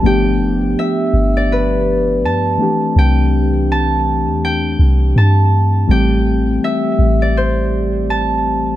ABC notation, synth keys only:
X:1
M:4/4
L:1/8
Q:"Swing 16ths" 1/4=82
K:Am
V:1 name="Synth keys"
[F,A,B,DG]6- [F,A,B,DG] [E,A,CDG]- | [E,A,CDG]6- [E,A,CDG] z | [E,G,A,CG]8 |]